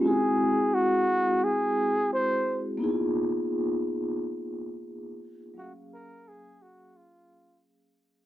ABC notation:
X:1
M:4/4
L:1/16
Q:"Swing 16ths" 1/4=87
K:Abmix
V:1 name="Flugelhorn"
A4 G4 A4 c3 z | z16 | G2 B2 A2 G2 F4 z4 |]
V:2 name="Vibraphone"
[A,C=EGA]16 | [B,_CE_F=FA]16 | [G,=A,B,D_Af]16 |]